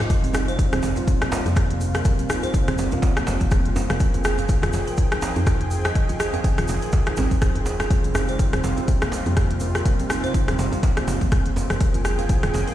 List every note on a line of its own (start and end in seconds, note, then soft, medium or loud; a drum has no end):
0.00 3.96 C4 medium
0.00 3.96 F4 medium
0.10 0.55 F1 loud
0.10 3.96 C3 medium
0.10 3.96 G3 medium
0.10 kick loud
0.10 closed hi-hat medium
0.10 djembe tone medium
0.10 shaker medium
0.24 0.33 C4 medium
0.24 closed hi-hat soft
0.24 shaker soft
0.33 0.47 D#4 medium
0.33 cross-stick loud
0.33 open hi-hat loud
0.33 djembe tone loud
0.33 shaker loud
0.48 0.58 C5 medium
0.48 closed hi-hat soft
0.48 shaker soft
0.59 0.70 C2 medium
0.59 kick loud
0.59 closed hi-hat medium
0.59 shaker medium
0.72 0.81 D#1 loud
0.72 0.83 C4 loud
0.72 cross-stick medium
0.72 closed hi-hat medium
0.72 djembe tone medium
0.72 shaker soft
0.83 0.94 F1 medium
0.83 open hi-hat medium
0.83 djembe slap medium
0.83 shaker medium
0.96 1.07 F4 medium
0.96 closed hi-hat soft
0.96 djembe tone medium
0.96 shaker soft
1.08 kick loud
1.08 closed hi-hat medium
1.08 shaker medium
1.21 1.31 A#3 medium
1.21 cross-stick loud
1.21 closed hi-hat soft
1.21 djembe tone medium
1.21 shaker soft
1.32 open hi-hat loud
1.32 djembe slap loud
1.32 shaker medium
1.46 2.02 F2 loud
1.46 1.55 A#3 medium
1.46 closed hi-hat soft
1.46 shaker soft
1.56 kick loud
1.56 cross-stick medium
1.56 closed hi-hat medium
1.56 djembe tone medium
1.56 shaker medium
1.71 closed hi-hat soft
1.81 open hi-hat medium
1.81 djembe tone medium
1.81 shaker medium
1.94 2.04 A#4 medium
1.94 cross-stick medium
1.94 closed hi-hat soft
1.94 shaker soft
2.05 kick loud
2.05 closed hi-hat medium
2.05 djembe tone medium
2.05 shaker medium
2.19 2.29 C4 medium
2.19 closed hi-hat soft
2.19 shaker soft
2.29 2.42 D#4 medium
2.29 cross-stick loud
2.29 open hi-hat loud
2.29 shaker loud
2.43 2.53 C5 medium
2.43 closed hi-hat soft
2.43 djembe tone medium
2.43 shaker soft
2.54 2.65 C2 medium
2.54 kick loud
2.54 closed hi-hat medium
2.54 shaker medium
2.68 2.76 D#1 loud
2.68 2.78 C4 loud
2.68 cross-stick medium
2.68 closed hi-hat soft
2.68 djembe tone medium
2.68 shaker soft
2.78 2.89 F1 medium
2.78 open hi-hat medium
2.78 djembe slap medium
2.78 shaker loud
2.91 3.02 F4 medium
2.91 closed hi-hat soft
2.91 djembe tone loud
2.91 shaker soft
3.02 kick loud
3.02 closed hi-hat medium
3.02 djembe slap loud
3.02 shaker medium
3.17 3.27 A#3 medium
3.17 cross-stick loud
3.17 closed hi-hat soft
3.17 shaker soft
3.27 3.38 F1 medium
3.27 open hi-hat loud
3.27 djembe slap loud
3.27 djembe tone medium
3.27 shaker loud
3.40 3.85 F1 loud
3.40 3.50 A#3 medium
3.40 kick medium
3.40 closed hi-hat soft
3.40 shaker soft
3.51 kick loud
3.51 cross-stick medium
3.51 closed hi-hat medium
3.51 djembe tone medium
3.51 shaker medium
3.65 closed hi-hat soft
3.76 open hi-hat medium
3.76 djembe slap medium
3.76 djembe tone loud
3.76 shaker medium
3.90 3.98 F1 loud
3.90 3.99 A#4 medium
3.90 cross-stick medium
3.90 closed hi-hat soft
3.90 shaker soft
4.00 4.46 F1 loud
4.00 7.87 F3 medium
4.00 12.74 C4 medium
4.00 7.87 G#4 medium
4.00 7.87 G5 medium
4.00 kick loud
4.00 closed hi-hat medium
4.00 shaker medium
4.14 4.24 F4 medium
4.14 closed hi-hat soft
4.14 djembe tone medium
4.14 shaker soft
4.24 4.37 G#4 medium
4.24 cross-stick loud
4.24 open hi-hat loud
4.24 shaker loud
4.38 4.48 F5 medium
4.38 closed hi-hat soft
4.38 djembe tone medium
4.38 shaker soft
4.48 4.60 C2 medium
4.48 kick loud
4.48 closed hi-hat medium
4.48 shaker medium
4.62 4.71 D#1 loud
4.62 4.73 F4 loud
4.62 cross-stick medium
4.62 closed hi-hat soft
4.62 djembe tone loud
4.62 shaker soft
4.73 4.84 F1 medium
4.73 open hi-hat medium
4.73 djembe slap medium
4.73 shaker loud
4.87 4.97 A#4 medium
4.87 closed hi-hat soft
4.87 shaker soft
4.97 kick loud
4.97 closed hi-hat medium
4.97 djembe tone medium
4.97 shaker medium
5.12 5.22 D#4 medium
5.12 cross-stick loud
5.12 closed hi-hat soft
5.12 shaker soft
5.22 open hi-hat medium
5.22 djembe slap loud
5.22 djembe tone medium
5.22 shaker loud
5.36 5.92 F2 loud
5.36 5.46 D#4 medium
5.36 closed hi-hat soft
5.36 shaker soft
5.46 kick loud
5.46 cross-stick medium
5.46 closed hi-hat medium
5.46 djembe tone loud
5.46 shaker medium
5.61 closed hi-hat soft
5.71 open hi-hat medium
5.71 shaker medium
5.85 5.94 D#5 medium
5.85 cross-stick loud
5.85 closed hi-hat soft
5.85 djembe tone medium
5.85 shaker soft
5.95 kick loud
5.95 closed hi-hat medium
5.95 shaker medium
6.09 6.19 F4 medium
6.09 closed hi-hat soft
6.09 djembe tone medium
6.09 shaker soft
6.20 6.32 G#4 medium
6.20 cross-stick loud
6.20 open hi-hat loud
6.20 shaker loud
6.33 6.43 F5 medium
6.33 closed hi-hat soft
6.33 djembe tone medium
6.33 shaker soft
6.44 6.55 C2 medium
6.44 kick loud
6.44 closed hi-hat medium
6.44 shaker medium
6.58 6.67 D#1 loud
6.58 6.68 F4 loud
6.58 cross-stick medium
6.58 closed hi-hat soft
6.58 shaker soft
6.68 6.80 F1 medium
6.68 open hi-hat medium
6.68 djembe slap medium
6.68 djembe tone medium
6.68 shaker loud
6.82 6.92 A#4 medium
6.82 closed hi-hat soft
6.82 shaker soft
6.92 kick loud
6.92 closed hi-hat medium
6.92 djembe slap loud
6.92 djembe tone medium
6.92 shaker medium
7.06 7.17 D#4 medium
7.06 cross-stick loud
7.06 closed hi-hat soft
7.06 shaker soft
7.16 7.28 G#1 medium
7.16 7.30 C4 loud
7.16 open hi-hat medium
7.16 djembe slap loud
7.16 djembe tone loud
7.16 shaker loud
7.31 7.68 F1 loud
7.31 7.41 F4 medium
7.31 kick medium
7.31 closed hi-hat soft
7.31 shaker soft
7.42 kick loud
7.42 cross-stick medium
7.42 closed hi-hat medium
7.42 shaker medium
7.55 closed hi-hat soft
7.55 djembe tone medium
7.66 7.82 D#1 medium
7.66 open hi-hat medium
7.66 djembe slap medium
7.66 shaker medium
7.79 7.89 F1 medium
7.79 7.89 G#4 medium
7.79 cross-stick medium
7.79 closed hi-hat soft
7.79 djembe tone medium
7.79 shaker soft
7.90 8.36 F1 loud
7.90 11.77 C3 medium
7.90 11.77 G3 medium
7.90 11.77 F4 medium
7.90 kick loud
7.90 closed hi-hat medium
7.90 djembe tone medium
7.90 shaker medium
8.04 8.14 C4 medium
8.04 closed hi-hat soft
8.04 shaker soft
8.15 8.27 D#4 medium
8.15 cross-stick loud
8.15 open hi-hat medium
8.15 djembe tone loud
8.15 shaker loud
8.28 8.38 C5 medium
8.28 closed hi-hat soft
8.28 shaker soft
8.39 8.50 C2 medium
8.39 kick loud
8.39 closed hi-hat medium
8.39 shaker medium
8.53 8.62 D#1 loud
8.53 8.63 C4 loud
8.53 cross-stick medium
8.53 closed hi-hat soft
8.53 djembe tone medium
8.53 shaker soft
8.64 8.75 F1 medium
8.64 open hi-hat medium
8.64 djembe slap medium
8.64 shaker loud
8.77 8.87 F4 medium
8.77 closed hi-hat soft
8.77 djembe tone medium
8.77 shaker soft
8.88 kick loud
8.88 closed hi-hat medium
8.88 shaker soft
9.02 9.12 A#3 medium
9.02 cross-stick loud
9.02 closed hi-hat soft
9.02 djembe tone medium
9.02 shaker soft
9.12 open hi-hat medium
9.12 djembe slap loud
9.12 shaker loud
9.26 9.82 F2 medium
9.26 9.36 A#3 medium
9.26 closed hi-hat soft
9.26 shaker soft
9.37 kick loud
9.37 cross-stick medium
9.37 closed hi-hat medium
9.37 djembe tone medium
9.37 shaker soft
9.51 closed hi-hat soft
9.60 open hi-hat medium
9.60 djembe tone medium
9.60 shaker loud
9.75 9.84 A#4 medium
9.75 cross-stick medium
9.75 closed hi-hat soft
9.75 shaker soft
9.85 kick loud
9.85 closed hi-hat medium
9.85 djembe tone medium
9.85 shaker soft
9.99 10.09 C4 medium
9.99 closed hi-hat soft
9.99 shaker soft
10.10 10.22 D#4 medium
10.10 cross-stick loud
10.10 open hi-hat medium
10.10 shaker loud
10.23 10.33 C5 medium
10.23 closed hi-hat soft
10.23 djembe tone medium
10.23 shaker soft
10.34 10.45 C2 medium
10.34 kick loud
10.34 closed hi-hat medium
10.34 shaker medium
10.48 10.57 D#1 loud
10.48 10.58 C4 loud
10.48 cross-stick medium
10.48 closed hi-hat soft
10.48 djembe tone medium
10.48 shaker soft
10.59 10.70 F1 medium
10.59 open hi-hat medium
10.59 djembe slap medium
10.59 shaker medium
10.72 10.83 F4 medium
10.72 closed hi-hat soft
10.72 djembe tone medium
10.72 shaker soft
10.83 kick loud
10.83 closed hi-hat medium
10.83 djembe slap medium
10.83 shaker soft
10.97 11.07 A#3 medium
10.97 cross-stick medium
10.97 closed hi-hat soft
10.97 shaker soft
11.07 11.18 F1 medium
11.07 open hi-hat medium
11.07 djembe slap medium
11.07 djembe tone medium
11.07 shaker loud
11.21 11.66 F1 loud
11.21 11.31 A#3 medium
11.21 kick medium
11.21 closed hi-hat soft
11.21 shaker soft
11.32 kick loud
11.32 cross-stick medium
11.32 closed hi-hat medium
11.32 djembe tone medium
11.32 shaker soft
11.46 closed hi-hat soft
11.56 open hi-hat medium
11.56 djembe slap medium
11.56 djembe tone medium
11.56 shaker medium
11.70 11.79 F1 loud
11.70 11.80 A#4 medium
11.70 cross-stick medium
11.70 closed hi-hat soft
11.70 shaker soft
11.81 12.26 F1 loud
11.81 12.74 F3 medium
11.81 12.74 G#4 medium
11.81 12.74 G5 medium
11.81 kick loud
11.81 closed hi-hat medium
11.81 shaker medium
11.94 12.04 F4 medium
11.94 closed hi-hat soft
11.94 djembe tone medium
11.94 shaker soft
12.05 12.17 G#4 medium
12.05 cross-stick medium
12.05 open hi-hat loud
12.05 shaker medium
12.19 12.28 F5 medium
12.19 closed hi-hat soft
12.19 djembe tone medium
12.19 shaker soft
12.29 12.41 C2 medium
12.29 kick loud
12.29 closed hi-hat medium
12.29 shaker medium
12.43 12.52 D#1 loud
12.43 12.53 F4 loud
12.43 cross-stick medium
12.43 closed hi-hat soft
12.43 djembe tone medium
12.43 shaker soft
12.54 12.65 F1 medium
12.54 open hi-hat medium
12.54 djembe slap medium
12.54 shaker medium
12.67 12.74 A#4 medium
12.67 closed hi-hat soft
12.67 shaker soft